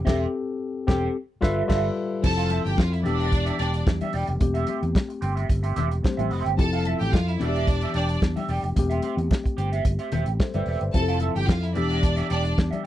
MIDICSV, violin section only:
0, 0, Header, 1, 2, 480
1, 0, Start_track
1, 0, Tempo, 544465
1, 57, Time_signature, 4, 2, 24, 8
1, 11340, End_track
2, 0, Start_track
2, 0, Title_t, "Violin section"
2, 0, Program_c, 0, 48
2, 1971, Note_on_c, 0, 69, 104
2, 1972, Note_on_c, 0, 81, 125
2, 2165, Note_off_c, 0, 69, 0
2, 2166, Note_off_c, 0, 81, 0
2, 2333, Note_on_c, 0, 67, 88
2, 2333, Note_on_c, 0, 79, 106
2, 2427, Note_off_c, 0, 67, 0
2, 2427, Note_off_c, 0, 79, 0
2, 2444, Note_on_c, 0, 77, 89
2, 2450, Note_on_c, 0, 65, 81
2, 2550, Note_off_c, 0, 77, 0
2, 2553, Note_off_c, 0, 65, 0
2, 2566, Note_on_c, 0, 76, 74
2, 2571, Note_on_c, 0, 64, 77
2, 2662, Note_off_c, 0, 76, 0
2, 2665, Note_off_c, 0, 64, 0
2, 2677, Note_on_c, 0, 62, 116
2, 2680, Note_on_c, 0, 74, 118
2, 3136, Note_off_c, 0, 62, 0
2, 3138, Note_off_c, 0, 74, 0
2, 3161, Note_on_c, 0, 62, 83
2, 3163, Note_on_c, 0, 74, 93
2, 3358, Note_off_c, 0, 62, 0
2, 3359, Note_off_c, 0, 74, 0
2, 5797, Note_on_c, 0, 81, 104
2, 5800, Note_on_c, 0, 69, 109
2, 5993, Note_off_c, 0, 81, 0
2, 5995, Note_off_c, 0, 69, 0
2, 6170, Note_on_c, 0, 79, 107
2, 6171, Note_on_c, 0, 67, 99
2, 6262, Note_off_c, 0, 79, 0
2, 6263, Note_off_c, 0, 67, 0
2, 6284, Note_on_c, 0, 65, 76
2, 6284, Note_on_c, 0, 77, 92
2, 6387, Note_off_c, 0, 65, 0
2, 6387, Note_off_c, 0, 77, 0
2, 6416, Note_on_c, 0, 76, 84
2, 6418, Note_on_c, 0, 64, 74
2, 6505, Note_off_c, 0, 76, 0
2, 6507, Note_off_c, 0, 64, 0
2, 6523, Note_on_c, 0, 74, 114
2, 6526, Note_on_c, 0, 62, 103
2, 6976, Note_off_c, 0, 74, 0
2, 6978, Note_off_c, 0, 62, 0
2, 7004, Note_on_c, 0, 62, 84
2, 7008, Note_on_c, 0, 74, 109
2, 7197, Note_off_c, 0, 62, 0
2, 7199, Note_off_c, 0, 74, 0
2, 9641, Note_on_c, 0, 81, 109
2, 9643, Note_on_c, 0, 69, 101
2, 9837, Note_off_c, 0, 81, 0
2, 9838, Note_off_c, 0, 69, 0
2, 10010, Note_on_c, 0, 79, 101
2, 10014, Note_on_c, 0, 67, 99
2, 10103, Note_off_c, 0, 79, 0
2, 10105, Note_off_c, 0, 67, 0
2, 10117, Note_on_c, 0, 65, 80
2, 10118, Note_on_c, 0, 77, 92
2, 10224, Note_off_c, 0, 65, 0
2, 10225, Note_off_c, 0, 77, 0
2, 10245, Note_on_c, 0, 76, 87
2, 10247, Note_on_c, 0, 64, 75
2, 10340, Note_off_c, 0, 76, 0
2, 10342, Note_off_c, 0, 64, 0
2, 10347, Note_on_c, 0, 62, 101
2, 10349, Note_on_c, 0, 74, 117
2, 10811, Note_off_c, 0, 62, 0
2, 10812, Note_off_c, 0, 74, 0
2, 10842, Note_on_c, 0, 62, 91
2, 10844, Note_on_c, 0, 74, 104
2, 11039, Note_off_c, 0, 62, 0
2, 11040, Note_off_c, 0, 74, 0
2, 11340, End_track
0, 0, End_of_file